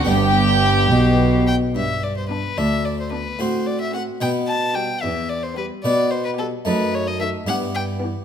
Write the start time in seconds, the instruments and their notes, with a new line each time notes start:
0.05 double bass section G1, cello section G2, harpsichord G2 B3 D4, viola section B3, violin section G4 G5, violin G4
0.91 double bass section B1, cello section B2, harpsichord B2
1.47 violin G5
1.76 cello section G2, harpsichord G2, violin E5
2.03 violin D5
2.17 violin C5
2.29 viola section B3, violin section D4 G4, violin B4
2.58 cello section D2, harpsichord D2 D4, violin E5
2.85 violin D5
3.00 violin C5
3.12 viola section B3, violin section D4 G4, violin B4
3.39 harpsichord A2 C4 F#4, cello section A2, violin C5
3.67 violin D5
3.81 violin E5
3.93 viola section A3, violin section C4 F#4, violin F#5
4.21 harpsichord B2 B3 B4, cello section B2, violin G5
4.48 violin A5
4.75 viola section G3, violin section B3 G4, violin G5
5.01 harpsichord E2, cello section E2, violin E5
5.29 violin D5
5.43 violin C5
5.57 viola section G3, violin section B3 G4, violin B4
5.84 cello section B2, harpsichord B2 B3 B4, violin D5
6.10 violin C5
6.25 violin B4
6.38 viola section G3, violin section B3 G4, violin A4
6.65 harpsichord F#2 A3 D#4 A4, cello section F#2, violin B4
6.94 violin C#5
7.08 violin D#5
7.20 viola section D#3, violin section A3 A4, violin E5
7.47 harpsichord G2 B3 E4 G4, cello section G2, violin F#5
7.75 violin G5
8.01 viola section E3, violin section B3 G4